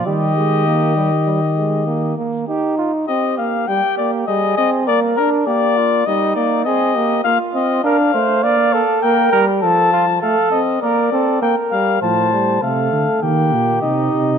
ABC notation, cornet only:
X:1
M:4/4
L:1/8
Q:1/4=100
K:Eb
V:1 name="Cornet"
e6- e z | z2 e f g d e e | d B d2 e d e2 | f e f2 f2 g z |
=a2 f e d2 g f | =a2 f2 g2 e2 |]